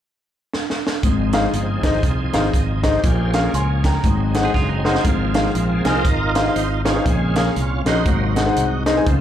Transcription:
0.53 snare
0.70 snare
0.87 snare
1.03 fingered electric bass G#1, grand piano G#2, tonewheel organ F3 C4 D#4 G#4, kick, closed hi-hat
1.33 grand piano D#4 G#4 C5 F5, snare, closed hi-hat
1.54 fingered electric bass G1, closed hi-hat
1.83 fingered electric bass G#1, grand piano D#4 G#4 C5 D#5, kick, snare, closed hi-hat
2.03 fingered electric bass C2, kick, closed hi-hat
2.33 fingered electric bass G#1, grand piano D#4 G#4 C5 F5, snare, closed hi-hat
2.53 fingered electric bass G#1, tonewheel organ D#5 G#5, kick, closed hi-hat
2.83 grand piano D#4 G#4 C5 D#5, tonewheel organ G4 C5, kick, snare, closed hi-hat
3.04 fingered electric bass A#1, grand piano A#2, tonewheel organ F3 A#3 C#4 G#4, kick, closed hi-hat
3.34 grand piano C#4 G#4 A#4 F5, snare, closed hi-hat
3.54 fingered electric bass C#2, grand piano G#5 C6, closed hi-hat
3.84 grand piano G5 A#5, kick, snare, closed hi-hat
4.04 fingered electric bass G#1, grand piano G#2, tonewheel organ F#3 C4 D#4 G#4, kick, closed hi-hat
4.35 grand piano D#4 G#4 C5 F#5, snare, closed hi-hat
4.45 clean electric guitar G#4
4.54 fingered electric bass F#1, clean electric guitar F4, kick, snare
4.69 clean electric guitar D#4
4.84 tonewheel organ C4 F4 G#4, grand piano D#4 G#4 C5 F#5, snare
4.95 snare
5.04 fingered electric bass G#1, grand piano G#2, tonewheel organ F3 A#3 C4, kick, closed hi-hat
5.34 grand piano D#4 G#4 C5 F5, snare, closed hi-hat
5.55 fingered electric bass A#1, closed hi-hat
5.84 fingered electric bass C2, tonewheel organ F3 A#3 C4 D#4 F4 A#4, grand piano D#4 G#4 C5 G#5, snare, closed hi-hat
6.05 fingered electric bass G#1, kick, closed hi-hat
6.35 grand piano D#4 G#4 C5 F5, snare, closed hi-hat
6.45 grand piano D#4 G#4 C5 F5
6.56 fingered electric bass G#1, tonewheel organ C5, closed hi-hat
6.85 tonewheel organ C#4 F4 G#4, grand piano D#4 G#4 C5 F5, snare, closed hi-hat
6.95 grand piano D#4 G#4 C5 F5
7.05 fingered electric bass A#1, grand piano A#2, tonewheel organ C#3 G#3 C4, kick, closed hi-hat
7.35 grand piano C#4 G#4 A#4 F5, snare, closed hi-hat
7.56 fingered electric bass C2, closed hi-hat
7.85 fingered electric bass A#1, grand piano C#4 G#4 A#4 D#5, tonewheel organ D#4 F#4 C5, snare, closed hi-hat
8.06 fingered electric bass G#1, grand piano G#2, tonewheel organ C3 F#3 A#3, kick, closed hi-hat
8.36 grand piano D#4 G#4 C5 F#5, snare, closed hi-hat
8.46 grand piano D#4 G#4 C5 F#5
8.56 fingered electric bass C2, closed hi-hat
8.86 grand piano D#4 G#4 C5 D#5, snare, closed hi-hat
8.97 grand piano D#4 G#4 C5 G#5
9.06 fingered electric bass C#2, grand piano C#3, tonewheel organ D#3 F3 C4, kick, closed hi-hat

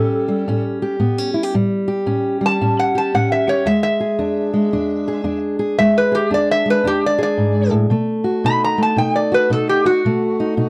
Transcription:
Already playing: steel-string acoustic guitar A2 G3 C#4 G4, resonator guitar played with a steel bar A4
0.28 steel-string acoustic guitar G3
0.48 steel-string acoustic guitar A2 C#4
0.82 steel-string acoustic guitar G4
1.00 steel-string acoustic guitar A2 B3
1.18 steel-string acoustic guitar C#4
1.34 steel-string acoustic guitar E4
1.43 steel-string acoustic guitar G4
1.54 steel-string acoustic guitar A2 G3
1.88 steel-string acoustic guitar G4
2.06 steel-string acoustic guitar A2 C#4
2.41 steel-string acoustic guitar G3
2.46 resonator guitar played with a steel bar A5
2.61 steel-string acoustic guitar A2 C#4
2.79 resonator guitar played with a steel bar F#5
2.95 steel-string acoustic guitar G4, resonator guitar played with a steel bar A5
3.14 steel-string acoustic guitar A2 C#4, resonator guitar played with a steel bar F#5
3.32 resonator guitar played with a steel bar E5
3.48 steel-string acoustic guitar G4, resonator guitar played with a steel bar C#5
3.66 steel-string acoustic guitar E2 G#3, resonator guitar played with a steel bar E5
3.83 resonator guitar played with a steel bar E5
4.00 steel-string acoustic guitar G#4
4.19 steel-string acoustic guitar E2 D4
4.54 steel-string acoustic guitar G#3
4.73 steel-string acoustic guitar E2 D4
5.08 steel-string acoustic guitar G#4
5.24 steel-string acoustic guitar E2 D4
5.59 steel-string acoustic guitar G#4
5.78 steel-string acoustic guitar E2 G#3, resonator guitar played with a steel bar E5
5.98 resonator guitar played with a steel bar B4
6.12 resonator guitar played with a steel bar G4, steel-string acoustic guitar G#4
6.30 steel-string acoustic guitar E2 D4, resonator guitar played with a steel bar D5
6.51 resonator guitar played with a steel bar E5
6.66 steel-string acoustic guitar G#3
6.70 resonator guitar played with a steel bar B4
6.84 steel-string acoustic guitar E2 D4, resonator guitar played with a steel bar G4
7.06 resonator guitar played with a steel bar D5
7.18 steel-string acoustic guitar G#4
7.23 resonator guitar played with a steel bar D5
7.38 steel-string acoustic guitar G#2
7.70 steel-string acoustic guitar A2
7.90 steel-string acoustic guitar B2 A3
8.24 steel-string acoustic guitar F#4
8.44 steel-string acoustic guitar B2 D#4, resonator guitar played with a steel bar B5
8.64 resonator guitar played with a steel bar A#5
8.78 steel-string acoustic guitar A3
8.83 resonator guitar played with a steel bar A5
8.96 steel-string acoustic guitar B2 D#4, resonator guitar played with a steel bar G5
9.16 resonator guitar played with a steel bar D5
9.32 steel-string acoustic guitar F#4, resonator guitar played with a steel bar B4
9.50 steel-string acoustic guitar B2 D#4, resonator guitar played with a steel bar A4
9.69 resonator guitar played with a steel bar G4
9.85 steel-string acoustic guitar F#4, resonator guitar played with a steel bar F#4
10.05 steel-string acoustic guitar B2 A3
10.40 steel-string acoustic guitar D#4
10.57 steel-string acoustic guitar B2 D#4

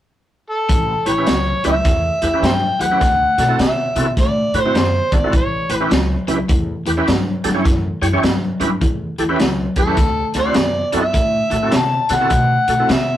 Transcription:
0.50 harmonica A4
0.69 upright bass A1, overdriven electric guitar A2 E3, kick, closed hi-hat
1.06 upright bass A1, overdriven electric guitar A2 E3, tonewheel organ G4 B4, harmonica C#5, closed hi-hat
1.18 tonewheel organ C#4 E4 G4 B4
1.27 upright bass C#2, overdriven electric guitar A2 F#3, snare, closed hi-hat
1.64 upright bass C#2, overdriven electric guitar A2 F#3, tonewheel organ C#4 E4 G4 B4, harmonica E5, closed hi-hat
1.85 upright bass E2, overdriven electric guitar A2 E3, kick, snare, closed hi-hat
2.22 upright bass E2, overdriven electric guitar A2 E3, tonewheel organ G4 B4, closed hi-hat
2.33 tonewheel organ C#4 E4 G4 B4
2.42 upright bass G2, overdriven electric guitar A2 F#3, harmonica C5 E5 G5, snare, closed hi-hat
2.79 upright bass E2, overdriven electric guitar A2 F#3, tonewheel organ G4 B4, harmonica F#5, closed hi-hat
2.91 tonewheel organ C#4 E4 G4 B4
3.01 upright bass D2, overdriven electric guitar D3 A3, kick, snare, closed hi-hat
3.38 upright bass B2, overdriven electric guitar D3 A3, tonewheel organ F#4 A4, snare, closed hi-hat
3.48 tonewheel organ C4 E4 F#4 A4
3.59 upright bass C3, overdriven electric guitar D3 B3, harmonica E5, snare, closed hi-hat
3.96 upright bass C3, overdriven electric guitar D3 B3, tonewheel organ C4 E4 F#4 A4, closed hi-hat
4.17 upright bass A2, overdriven electric guitar D3 A3, harmonica D5, kick, snare, closed hi-hat
4.54 upright bass A2, overdriven electric guitar D3 A3, tonewheel organ F#4 B4, closed hi-hat
4.61 harmonica C5
4.65 tonewheel organ C4 E4 F#4 C5
4.74 upright bass F#2, overdriven electric guitar D3 B3, harmonica C5, snare, closed hi-hat
5.12 upright bass G#1, overdriven electric guitar D3 B3, tonewheel organ F#4 A4, harmonica D5, kick, closed hi-hat
5.24 tonewheel organ C4 E4 F#4 A4
5.33 upright bass A1, overdriven electric guitar A2 E3, harmonica C#5, kick, closed hi-hat
5.69 upright bass A1, overdriven electric guitar A2 E3, tonewheel organ G4 B4, closed hi-hat
5.77 tonewheel organ C#4 E4 G4 B4, harmonica B4
5.90 upright bass C#2, overdriven electric guitar A2 F#3, snare, closed hi-hat
6.27 upright bass C#2, overdriven electric guitar A2 F#3, tonewheel organ C#4 E4 G4 B4, closed hi-hat
6.48 upright bass E2, overdriven electric guitar A2 E3, kick, closed hi-hat
6.86 upright bass E2, overdriven electric guitar A2 E3, tonewheel organ G4 B4, closed hi-hat
6.97 tonewheel organ C#4 E4 G4 B4
7.07 upright bass G2, overdriven electric guitar A2 F#3, snare, closed hi-hat
7.44 upright bass G2, overdriven electric guitar A2 F#3, tonewheel organ G4 A4, snare, closed hi-hat
7.54 tonewheel organ C#4 E4 G4 C#5
7.65 upright bass F#2, overdriven electric guitar A2 E3, kick, snare, closed hi-hat
8.02 upright bass F#2, overdriven electric guitar A2 E3, tonewheel organ G4 C#5, closed hi-hat
8.13 tonewheel organ C#4 E4 G4 C#5
8.23 upright bass G2, overdriven electric guitar A2 F#3, snare, closed hi-hat
8.60 upright bass G2, overdriven electric guitar A2 F#3, tonewheel organ C#4 E4 G4 B4, closed hi-hat
8.81 upright bass E2, overdriven electric guitar A2 E3, kick, closed hi-hat
9.18 upright bass E2, overdriven electric guitar A2 E3, tonewheel organ G4 A4, closed hi-hat
9.29 tonewheel organ C#4 E4 G4 B4
9.40 upright bass C#2, overdriven electric guitar A2 F#3, snare, closed hi-hat
9.76 upright bass E2, overdriven electric guitar A2 F#3, tonewheel organ G4 B4, harmonica A4, kick, closed hi-hat
9.87 tonewheel organ C#4 E4 G4 B4
9.97 upright bass D2, overdriven electric guitar D3 A3, kick, snare, closed hi-hat
10.34 upright bass D2, overdriven electric guitar D3 A3, tonewheel organ F#4 A4, snare, closed hi-hat
10.39 harmonica D5
10.46 tonewheel organ C4 E4 F#4 C5
10.54 upright bass F#2, overdriven electric guitar D3 B3, snare, closed hi-hat
10.92 upright bass F#2, overdriven electric guitar D3 B3, tonewheel organ C4 E4 F#4 A4, closed hi-hat
10.97 harmonica E5
11.13 upright bass A2, overdriven electric guitar D3 A3, kick, closed hi-hat
11.50 upright bass A2, overdriven electric guitar D3 A3, tonewheel organ F#4 A4, closed hi-hat
11.63 tonewheel organ C4 E4 F#4 A4
11.71 upright bass C3, overdriven electric guitar D3 B3, snare, closed hi-hat
11.77 harmonica A5
12.09 upright bass C3, overdriven electric guitar D3 B3, tonewheel organ F#4 A4, snare, closed hi-hat
12.13 harmonica F#5
12.20 tonewheel organ C4 E4 F#4 A4
12.30 upright bass B2, overdriven electric guitar D3 A3, kick, closed hi-hat
12.68 upright bass B2, overdriven electric guitar D3 A3, tonewheel organ F#4 A4, closed hi-hat
12.80 tonewheel organ C4 E4 F#4 A4
12.89 upright bass C3, overdriven electric guitar D3 B3, harmonica E5, snare, closed hi-hat

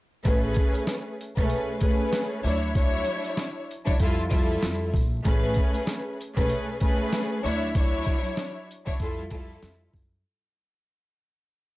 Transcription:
0.25 upright bass A1, string section A3 C#4 G#4 B4, kick, closed hi-hat
0.54 kick, closed hi-hat
0.74 closed hi-hat
0.87 snare, closed hi-hat
1.21 closed hi-hat
1.36 upright bass B1, string section A3 C#4 G#4 B4, kick, closed hi-hat
1.50 closed hi-hat
1.80 string section A3 C#4 G#4 B4, kick, closed hi-hat
2.13 snare, closed hi-hat
2.43 upright bass D2, string section F#3 D4 E4 C#5, open hi-hat
2.75 string section F#3 D4 E4 C#5, kick, closed hi-hat
3.04 closed hi-hat
3.24 closed hi-hat
3.37 snare, closed hi-hat
3.71 closed hi-hat
3.85 upright bass C#2, string section F#3 D4 E4 C#5, kick, closed hi-hat
3.99 upright bass F2, string section G3 E4 F4 A4, kick, closed hi-hat
4.30 string section G3 E4 F4 A4, kick, closed hi-hat
4.63 upright bass F2, snare, closed hi-hat
4.94 upright bass A#1, kick, open hi-hat
5.24 upright bass A1, string section A3 C#4 G#4 B4, kick, closed hi-hat
5.54 kick, closed hi-hat
5.74 closed hi-hat
5.87 snare, closed hi-hat
6.21 closed hi-hat
6.36 upright bass B1, string section A3 C#4 G#4 B4, kick, closed hi-hat
6.49 closed hi-hat
6.79 string section A3 C#4 G#4 B4, kick, closed hi-hat
7.13 snare, closed hi-hat
7.43 upright bass D2, string section F#3 D4 E4 C#5, open hi-hat
7.75 string section F#3 D4 E4 C#5, kick, closed hi-hat
8.04 kick, closed hi-hat
8.24 closed hi-hat
8.37 snare, closed hi-hat
8.71 closed hi-hat
8.85 upright bass C#2, string section F#3 D4 E4 C#5, kick, closed hi-hat
8.99 upright bass F2, string section G3 E4 F4 A4, kick, closed hi-hat
9.30 string section G3 E4 F4 A4, kick, closed hi-hat
9.63 upright bass F2, snare, closed hi-hat
9.94 upright bass F#2, kick, open hi-hat

